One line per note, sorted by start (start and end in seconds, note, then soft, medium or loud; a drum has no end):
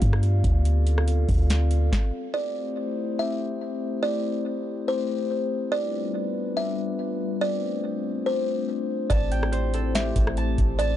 0.00 0.42 G2 loud
0.00 0.64 B3 medium
0.00 1.89 F4 medium
0.00 0.61 G4 medium
0.00 1.89 D5 medium
0.00 0.64 F5 medium
0.00 kick medium
0.00 closed hi-hat medium
0.13 cross-stick loud
0.23 closed hi-hat medium
0.44 1.25 D2 loud
0.44 kick medium
0.44 closed hi-hat medium
0.65 1.91 C4 medium
0.65 1.91 A4 medium
0.65 1.91 F5 medium
0.65 closed hi-hat medium
0.87 closed hi-hat medium
0.98 cross-stick loud
1.08 closed hi-hat medium
1.29 1.90 D2 loud
1.29 kick medium
1.29 open hi-hat medium
1.50 snare medium
1.50 closed hi-hat medium
1.71 closed hi-hat medium
1.92 kick loud
1.92 snare medium
2.34 5.69 A3 medium
2.34 5.69 C4 medium
2.34 5.69 E4 medium
2.34 5.69 G4 medium
2.34 5.69 C5 medium
2.34 2.74 D5 loud
3.19 4.00 E5 medium
4.03 4.43 D5 loud
4.88 5.69 C5 medium
5.72 7.40 G3 medium
5.72 7.40 B3 medium
5.72 9.07 D4 medium
5.72 9.07 F4 medium
5.72 7.40 B4 medium
5.72 6.12 D5 loud
6.57 7.37 E5 medium
7.41 9.09 A3 medium
7.41 9.09 C4 medium
7.41 10.97 C5 medium
7.41 7.81 D5 loud
8.26 9.07 C5 medium
9.10 10.12 A1 loud
9.10 10.97 A3 medium
9.10 10.97 C4 medium
9.10 10.97 E4 medium
9.10 10.97 G4 medium
9.10 9.50 D5 loud
9.10 10.37 A5 loud
9.10 kick loud
9.10 closed hi-hat medium
9.31 10.87 G5 medium
9.31 closed hi-hat medium
9.43 cross-stick loud
9.52 10.97 C5 loud
9.52 closed hi-hat medium
9.74 10.97 A4 medium
9.74 closed hi-hat medium
9.95 10.97 G4 medium
9.95 10.76 E5 medium
9.95 snare loud
9.95 closed hi-hat medium
10.16 10.57 A1 loud
10.16 kick medium
10.16 closed hi-hat medium
10.27 cross-stick loud
10.37 10.79 A5 loud
10.37 closed hi-hat medium
10.58 10.97 A1 loud
10.58 kick medium
10.58 closed hi-hat medium
10.79 10.97 D5 loud
10.79 10.97 A5 loud
10.79 closed hi-hat medium